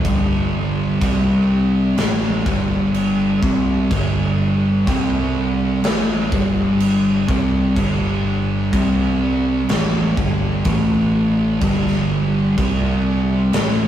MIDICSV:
0, 0, Header, 1, 4, 480
1, 0, Start_track
1, 0, Tempo, 964630
1, 22, Time_signature, 4, 2, 24, 8
1, 6905, End_track
2, 0, Start_track
2, 0, Title_t, "Distorted electric guitar"
2, 0, Program_c, 0, 30
2, 26, Note_on_c, 0, 43, 99
2, 29, Note_on_c, 0, 50, 102
2, 31, Note_on_c, 0, 55, 108
2, 497, Note_off_c, 0, 43, 0
2, 498, Note_off_c, 0, 50, 0
2, 499, Note_off_c, 0, 55, 0
2, 508, Note_on_c, 0, 48, 96
2, 511, Note_on_c, 0, 55, 96
2, 513, Note_on_c, 0, 60, 101
2, 978, Note_off_c, 0, 48, 0
2, 979, Note_off_c, 0, 55, 0
2, 980, Note_off_c, 0, 60, 0
2, 988, Note_on_c, 0, 52, 87
2, 989, Note_on_c, 0, 45, 89
2, 992, Note_on_c, 0, 57, 105
2, 1218, Note_off_c, 0, 45, 0
2, 1218, Note_off_c, 0, 52, 0
2, 1220, Note_off_c, 0, 57, 0
2, 1222, Note_on_c, 0, 43, 90
2, 1226, Note_on_c, 0, 50, 103
2, 1229, Note_on_c, 0, 55, 99
2, 1695, Note_off_c, 0, 43, 0
2, 1697, Note_off_c, 0, 50, 0
2, 1698, Note_off_c, 0, 55, 0
2, 1706, Note_on_c, 0, 48, 95
2, 1710, Note_on_c, 0, 55, 93
2, 1713, Note_on_c, 0, 60, 95
2, 1937, Note_off_c, 0, 48, 0
2, 1939, Note_off_c, 0, 55, 0
2, 1940, Note_off_c, 0, 60, 0
2, 1944, Note_on_c, 0, 43, 106
2, 1947, Note_on_c, 0, 50, 98
2, 1950, Note_on_c, 0, 55, 111
2, 2416, Note_off_c, 0, 43, 0
2, 2418, Note_off_c, 0, 50, 0
2, 2419, Note_off_c, 0, 55, 0
2, 2422, Note_on_c, 0, 48, 98
2, 2427, Note_on_c, 0, 55, 94
2, 2431, Note_on_c, 0, 60, 96
2, 2896, Note_off_c, 0, 48, 0
2, 2898, Note_off_c, 0, 55, 0
2, 2900, Note_off_c, 0, 60, 0
2, 2905, Note_on_c, 0, 45, 92
2, 2910, Note_on_c, 0, 52, 92
2, 2913, Note_on_c, 0, 57, 86
2, 3137, Note_off_c, 0, 45, 0
2, 3139, Note_off_c, 0, 52, 0
2, 3140, Note_on_c, 0, 43, 94
2, 3141, Note_off_c, 0, 57, 0
2, 3146, Note_on_c, 0, 50, 92
2, 3150, Note_on_c, 0, 55, 105
2, 3615, Note_off_c, 0, 43, 0
2, 3618, Note_off_c, 0, 50, 0
2, 3620, Note_off_c, 0, 55, 0
2, 3624, Note_on_c, 0, 48, 94
2, 3626, Note_on_c, 0, 55, 94
2, 3629, Note_on_c, 0, 60, 104
2, 3857, Note_off_c, 0, 48, 0
2, 3857, Note_off_c, 0, 55, 0
2, 3859, Note_off_c, 0, 60, 0
2, 3863, Note_on_c, 0, 43, 115
2, 3867, Note_on_c, 0, 50, 111
2, 3871, Note_on_c, 0, 55, 127
2, 4336, Note_off_c, 0, 43, 0
2, 4338, Note_off_c, 0, 50, 0
2, 4340, Note_off_c, 0, 55, 0
2, 4346, Note_on_c, 0, 48, 92
2, 4349, Note_on_c, 0, 55, 98
2, 4349, Note_on_c, 0, 60, 95
2, 4817, Note_off_c, 0, 48, 0
2, 4819, Note_off_c, 0, 55, 0
2, 4819, Note_off_c, 0, 60, 0
2, 4824, Note_on_c, 0, 45, 85
2, 4826, Note_on_c, 0, 52, 91
2, 4829, Note_on_c, 0, 57, 84
2, 5056, Note_off_c, 0, 45, 0
2, 5057, Note_off_c, 0, 52, 0
2, 5058, Note_on_c, 0, 43, 89
2, 5059, Note_off_c, 0, 57, 0
2, 5059, Note_on_c, 0, 50, 99
2, 5062, Note_on_c, 0, 55, 103
2, 5293, Note_off_c, 0, 43, 0
2, 5293, Note_off_c, 0, 50, 0
2, 5295, Note_off_c, 0, 55, 0
2, 5295, Note_on_c, 0, 45, 72
2, 5300, Note_on_c, 0, 52, 93
2, 5303, Note_on_c, 0, 57, 106
2, 5771, Note_off_c, 0, 45, 0
2, 5773, Note_off_c, 0, 52, 0
2, 5775, Note_off_c, 0, 57, 0
2, 5776, Note_on_c, 0, 43, 111
2, 5779, Note_on_c, 0, 50, 101
2, 5783, Note_on_c, 0, 55, 126
2, 6250, Note_off_c, 0, 43, 0
2, 6252, Note_off_c, 0, 50, 0
2, 6254, Note_off_c, 0, 55, 0
2, 6254, Note_on_c, 0, 48, 87
2, 6259, Note_on_c, 0, 55, 106
2, 6261, Note_on_c, 0, 60, 99
2, 6728, Note_off_c, 0, 48, 0
2, 6731, Note_off_c, 0, 55, 0
2, 6732, Note_off_c, 0, 60, 0
2, 6733, Note_on_c, 0, 45, 81
2, 6738, Note_on_c, 0, 52, 105
2, 6739, Note_on_c, 0, 57, 98
2, 6905, Note_off_c, 0, 45, 0
2, 6905, Note_off_c, 0, 52, 0
2, 6905, Note_off_c, 0, 57, 0
2, 6905, End_track
3, 0, Start_track
3, 0, Title_t, "Picked electric bass"
3, 0, Program_c, 1, 34
3, 24, Note_on_c, 1, 31, 92
3, 483, Note_off_c, 1, 31, 0
3, 504, Note_on_c, 1, 36, 86
3, 963, Note_off_c, 1, 36, 0
3, 980, Note_on_c, 1, 33, 97
3, 1204, Note_off_c, 1, 33, 0
3, 1222, Note_on_c, 1, 31, 98
3, 1682, Note_off_c, 1, 31, 0
3, 1702, Note_on_c, 1, 36, 93
3, 1925, Note_off_c, 1, 36, 0
3, 1942, Note_on_c, 1, 31, 95
3, 2403, Note_off_c, 1, 31, 0
3, 2421, Note_on_c, 1, 36, 86
3, 2882, Note_off_c, 1, 36, 0
3, 2901, Note_on_c, 1, 33, 96
3, 3125, Note_off_c, 1, 33, 0
3, 3143, Note_on_c, 1, 31, 102
3, 3603, Note_off_c, 1, 31, 0
3, 3623, Note_on_c, 1, 36, 83
3, 3847, Note_off_c, 1, 36, 0
3, 3862, Note_on_c, 1, 31, 95
3, 4323, Note_off_c, 1, 31, 0
3, 4342, Note_on_c, 1, 36, 83
3, 4802, Note_off_c, 1, 36, 0
3, 4820, Note_on_c, 1, 33, 94
3, 5044, Note_off_c, 1, 33, 0
3, 5059, Note_on_c, 1, 31, 99
3, 5284, Note_off_c, 1, 31, 0
3, 5300, Note_on_c, 1, 33, 103
3, 5760, Note_off_c, 1, 33, 0
3, 5778, Note_on_c, 1, 31, 98
3, 6239, Note_off_c, 1, 31, 0
3, 6257, Note_on_c, 1, 36, 77
3, 6717, Note_off_c, 1, 36, 0
3, 6732, Note_on_c, 1, 33, 90
3, 6905, Note_off_c, 1, 33, 0
3, 6905, End_track
4, 0, Start_track
4, 0, Title_t, "Drums"
4, 24, Note_on_c, 9, 36, 93
4, 24, Note_on_c, 9, 49, 53
4, 74, Note_off_c, 9, 36, 0
4, 74, Note_off_c, 9, 49, 0
4, 505, Note_on_c, 9, 36, 99
4, 505, Note_on_c, 9, 49, 51
4, 555, Note_off_c, 9, 36, 0
4, 555, Note_off_c, 9, 49, 0
4, 983, Note_on_c, 9, 49, 57
4, 989, Note_on_c, 9, 38, 104
4, 1033, Note_off_c, 9, 49, 0
4, 1038, Note_off_c, 9, 38, 0
4, 1225, Note_on_c, 9, 36, 95
4, 1274, Note_off_c, 9, 36, 0
4, 1465, Note_on_c, 9, 49, 54
4, 1515, Note_off_c, 9, 49, 0
4, 1705, Note_on_c, 9, 36, 103
4, 1754, Note_off_c, 9, 36, 0
4, 1945, Note_on_c, 9, 36, 91
4, 1945, Note_on_c, 9, 49, 53
4, 1995, Note_off_c, 9, 36, 0
4, 1995, Note_off_c, 9, 49, 0
4, 2425, Note_on_c, 9, 36, 103
4, 2427, Note_on_c, 9, 49, 52
4, 2475, Note_off_c, 9, 36, 0
4, 2477, Note_off_c, 9, 49, 0
4, 2905, Note_on_c, 9, 49, 60
4, 2911, Note_on_c, 9, 38, 106
4, 2955, Note_off_c, 9, 49, 0
4, 2960, Note_off_c, 9, 38, 0
4, 3145, Note_on_c, 9, 36, 104
4, 3195, Note_off_c, 9, 36, 0
4, 3386, Note_on_c, 9, 49, 56
4, 3435, Note_off_c, 9, 49, 0
4, 3625, Note_on_c, 9, 36, 101
4, 3675, Note_off_c, 9, 36, 0
4, 3864, Note_on_c, 9, 36, 95
4, 3864, Note_on_c, 9, 49, 52
4, 3913, Note_off_c, 9, 36, 0
4, 3914, Note_off_c, 9, 49, 0
4, 4344, Note_on_c, 9, 36, 102
4, 4345, Note_on_c, 9, 49, 56
4, 4393, Note_off_c, 9, 36, 0
4, 4395, Note_off_c, 9, 49, 0
4, 4822, Note_on_c, 9, 49, 50
4, 4827, Note_on_c, 9, 38, 112
4, 4871, Note_off_c, 9, 49, 0
4, 4877, Note_off_c, 9, 38, 0
4, 5062, Note_on_c, 9, 36, 96
4, 5112, Note_off_c, 9, 36, 0
4, 5298, Note_on_c, 9, 49, 45
4, 5301, Note_on_c, 9, 36, 106
4, 5348, Note_off_c, 9, 49, 0
4, 5351, Note_off_c, 9, 36, 0
4, 5779, Note_on_c, 9, 49, 47
4, 5780, Note_on_c, 9, 36, 93
4, 5828, Note_off_c, 9, 49, 0
4, 5830, Note_off_c, 9, 36, 0
4, 5905, Note_on_c, 9, 38, 37
4, 5955, Note_off_c, 9, 38, 0
4, 6259, Note_on_c, 9, 36, 93
4, 6259, Note_on_c, 9, 49, 49
4, 6309, Note_off_c, 9, 36, 0
4, 6309, Note_off_c, 9, 49, 0
4, 6734, Note_on_c, 9, 49, 57
4, 6739, Note_on_c, 9, 38, 112
4, 6783, Note_off_c, 9, 49, 0
4, 6789, Note_off_c, 9, 38, 0
4, 6905, End_track
0, 0, End_of_file